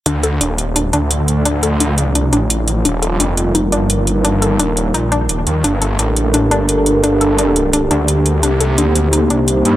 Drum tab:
HH |xxxxxxxx|xxxxxxxx|xxxxxxxx|xxxxxxxx|

HH |xxxxxxxx|xxxxxxxx|xxxxxxxx|